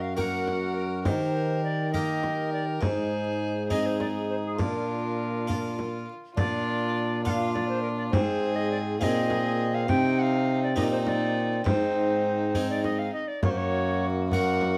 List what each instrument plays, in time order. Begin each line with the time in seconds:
Already playing: harpsichord F#2, trombone F#2, bassoon F#4, violin A#4
0.02 recorder F5
0.16 harpsichord A#3 F#4 A#4, bassoon F#4, violin A#4, recorder G5, frame drum
0.20 recorder F#5
0.48 frame drum
0.75 recorder A#4
1.05 harpsichord D#3, trombone D#3, bassoon G4, violin A#4, recorder C5, frame drum
1.64 recorder D5
1.92 harpsichord A#3 G4 A#4, bassoon G4, violin A#4, recorder D#5, frame drum
2.23 frame drum
2.52 recorder D5
2.67 recorder A#4
2.81 harpsichord G#2, trombone G#2, bassoon D#4, violin G#4, recorder C5, frame drum
3.69 harpsichord C4 D#4 G#4, bassoon D#4, violin G#4, recorder D#5, frame drum
3.86 recorder C5
4.00 recorder D5, frame drum
4.29 recorder C5
4.45 recorder G#4
4.57 harpsichord A#2, trombone A#2, bassoon D4, violin F4, recorder A#4, frame drum
5.47 harpsichord D4 F4, frame drum
5.79 frame drum
6.35 trombone A#2, harpsichord A#2, bassoon D4, violin F4, recorder D5, frame drum
7.25 bassoon D4, harpsichord D4 F4, violin F4, recorder F#5, frame drum
7.29 recorder F5
7.53 recorder D5, frame drum
7.69 recorder C5
7.82 recorder A#4
7.97 recorder D5
8.10 trombone G#2, harpsichord G#2, bassoon C4, violin G#4, recorder C5, frame drum
8.55 recorder D#5
8.71 recorder D5
8.99 harpsichord A#2 C4 D#4 G#4, trombone A#2, bassoon C4, violin G#4, recorder D#5 F5, frame drum
9.30 frame drum
9.74 recorder F5
9.88 harpsichord C3, trombone C3, bassoon C4, violin D#4, recorder G5, frame drum
10.19 recorder F5 F#5
10.63 recorder D5
10.75 harpsichord A#2 C4 D#4 G4, trombone A#2, bassoon C4, violin D#4, recorder D#5, frame drum
10.91 recorder C5
11.05 recorder D5 D#5, frame drum
11.64 harpsichord G#2, trombone G#2, bassoon C4, violin D#4, recorder C5, frame drum
12.55 harpsichord C4 D#4 G#4, frame drum
12.70 recorder D5
12.84 recorder D#5, frame drum
12.99 recorder F5
13.13 recorder D#5
13.28 recorder D5
13.43 harpsichord F#2, trombone F#2, bassoon A#3, violin F#4, recorder C#5, frame drum
13.50 recorder C5
13.57 recorder C#5
14.31 bassoon A#3, harpsichord A#3 F#4 A#4, violin F#4, recorder F#5, frame drum
14.61 frame drum